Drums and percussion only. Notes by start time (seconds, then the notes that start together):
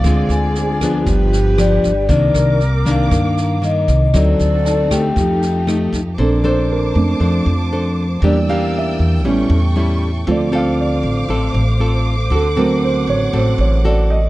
0.04 kick, cross-stick, snare
0.30 snare
0.55 snare
0.81 kick, cross-stick, snare
1.06 kick, snare
1.33 snare
1.58 cross-stick, snare
1.84 kick, snare
2.09 kick, snare
2.35 cross-stick, snare
2.60 snare
2.86 kick, snare
3.11 kick, cross-stick, snare
3.37 snare
3.63 snare
3.88 kick, snare
4.14 kick, cross-stick, snare
4.39 snare
4.66 snare
4.91 kick, cross-stick, snare
5.16 kick, snare
5.42 snare
5.68 cross-stick, snare
5.93 kick, snare